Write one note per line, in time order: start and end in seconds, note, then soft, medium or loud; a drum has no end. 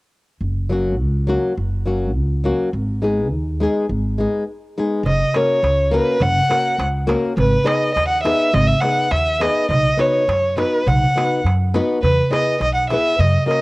0.41 1.01 F#1 medium
0.69 0.94 F#3 soft
0.69 0.94 A#3 soft
0.69 0.95 C#4 soft
0.69 0.96 F#4 medium
1.01 1.35 C#2 medium
1.27 1.52 F#3 medium
1.27 1.53 A#3 medium
1.27 1.53 C#4 soft
1.27 1.53 F#4 medium
1.57 2.16 F#1 medium
1.86 2.10 F#3 soft
1.86 2.10 A#3 soft
1.86 2.11 C#4 soft
1.86 2.11 F#4 medium
2.16 2.50 C#2 medium
2.44 2.68 F#3 medium
2.44 2.69 A#3 medium
2.44 2.69 C#4 soft
2.44 2.69 F#4 medium
2.73 3.30 G#1 medium
3.02 3.27 G#3 soft
3.02 3.27 B3 soft
3.02 3.27 D#4 soft
3.02 3.28 G#4 medium
3.30 3.65 D#2 medium
3.60 3.85 G#3 medium
3.60 3.85 B3 soft
3.60 3.85 D#4 medium
3.60 3.86 G#4 medium
3.89 4.24 G#1 medium
4.18 4.43 G#3 soft
4.18 4.44 B3 soft
4.18 4.43 D#4 soft
4.18 4.44 G#4 medium
4.78 5.02 G#3 medium
4.78 5.01 B3 medium
4.78 5.02 D#4 medium
4.78 5.02 G#4 medium
5.03 5.22 F#1 medium
5.03 5.38 D#5 medium
5.03 darbuka dum medium
5.21 darbuka tek soft
5.34 5.59 A#3 soft
5.34 5.59 C#4 soft
5.34 5.60 F#4 soft
5.34 5.60 A#4 medium
5.34 5.94 C#5 medium
5.34 darbuka tek medium
5.63 5.98 C#2 medium
5.63 darbuka tek medium
5.91 6.16 A#3 medium
5.91 6.17 C#4 soft
5.91 6.17 F#4 medium
5.91 6.17 A#4 medium
5.91 6.24 B4 medium
6.06 darbuka tek soft
6.20 6.39 F#1 medium
6.20 6.80 F#5 medium
6.20 darbuka dum medium
6.36 darbuka tek soft
6.49 6.74 A#3 medium
6.49 6.75 C#4 soft
6.49 6.75 F#4 soft
6.49 6.75 A#4 medium
6.49 darbuka tek medium
6.78 7.14 C#2 medium
6.78 darbuka tek medium
7.07 7.32 A#3 medium
7.07 7.33 C#4 medium
7.07 7.32 F#4 medium
7.07 7.33 A#4 medium
7.07 darbuka tek medium
7.25 darbuka tek soft
7.37 7.55 G#1 medium
7.37 7.67 B4 medium
7.37 darbuka dum medium
7.53 darbuka tek soft
7.64 7.90 B3 medium
7.64 7.90 D#4 soft
7.64 7.90 G#4 soft
7.64 7.90 B4 medium
7.64 7.94 D#5 medium
7.64 darbuka tek medium
7.94 8.31 D#2 medium
7.94 8.08 D#5 medium
7.94 darbuka tek medium
8.08 8.23 F#5 medium
8.23 8.49 B3 medium
8.23 8.49 D#4 medium
8.23 8.50 G#4 medium
8.23 8.50 B4 medium
8.23 8.55 E5 medium
8.23 darbuka tek medium
8.40 darbuka tek soft
8.54 8.71 G#1 medium
8.54 8.68 D#5 medium
8.54 darbuka dum loud
8.67 8.82 E5 medium
8.67 darbuka tek soft
8.80 9.07 B3 medium
8.80 9.07 D#4 soft
8.80 9.13 F#5 medium
8.80 darbuka tek medium
8.84 9.08 G#4 soft
8.84 9.08 B4 medium
9.11 9.46 D#2 medium
9.11 9.43 E5 medium
9.11 darbuka tek medium
9.26 darbuka tek soft
9.40 9.65 B3 medium
9.40 9.65 D#4 soft
9.40 9.66 G#4 medium
9.40 9.66 B4 medium
9.40 9.70 D#5 medium
9.40 darbuka tek medium
9.58 darbuka tek soft
9.69 9.87 B1 medium
9.69 10.02 D#5 medium
9.69 darbuka dum medium
9.87 darbuka tek soft
9.97 10.22 B3 medium
9.97 10.23 D#4 soft
9.97 10.23 F#4 soft
9.97 10.23 B4 medium
9.97 10.58 C#5 medium
9.97 darbuka tek medium
10.28 10.63 F#2 medium
10.28 darbuka tek medium
10.57 10.81 B3 medium
10.57 10.81 D#4 soft
10.57 10.82 F#4 medium
10.57 10.82 B4 medium
10.57 10.89 B4 medium
10.57 darbuka tek medium
10.74 darbuka tek soft
10.87 11.04 B1 medium
10.87 11.45 F#5 medium
10.87 darbuka dum medium
11.03 darbuka tek soft
11.16 11.40 B3 soft
11.16 11.40 D#4 soft
11.16 11.40 F#4 medium
11.16 11.41 B4 medium
11.16 darbuka tek medium
11.44 11.79 F#2 medium
11.44 darbuka tek medium
11.74 11.98 B3 medium
11.74 11.98 D#4 medium
11.74 11.98 F#4 medium
11.74 11.99 B4 medium
11.74 darbuka tek medium
11.90 darbuka tek soft
12.02 12.20 E2 medium
12.02 12.29 B4 medium
12.02 darbuka dum medium
12.19 darbuka tek soft
12.30 12.55 B3 medium
12.30 12.55 E4 soft
12.30 12.56 G#4 soft
12.30 12.56 B4 medium
12.30 12.59 D#5 medium
12.30 darbuka tek medium
12.60 12.95 B1 medium
12.60 12.74 D#5 medium
12.60 darbuka tek medium
12.74 12.88 F#5 medium
12.90 13.14 B3 medium
12.90 13.14 E4 medium
12.90 13.15 G#4 medium
12.90 13.15 B4 medium
12.90 13.21 E5 medium
12.90 darbuka tek medium
13.07 darbuka tek soft
13.19 13.36 F#2 medium
13.19 13.48 D#5 medium
13.19 darbuka dum medium
13.37 darbuka tek soft
13.46 13.62 A#3 soft
13.46 13.62 C#4 soft
13.46 13.62 F#4 soft
13.46 13.62 A#4 soft
13.46 13.62 D#5 medium
13.51 darbuka tek medium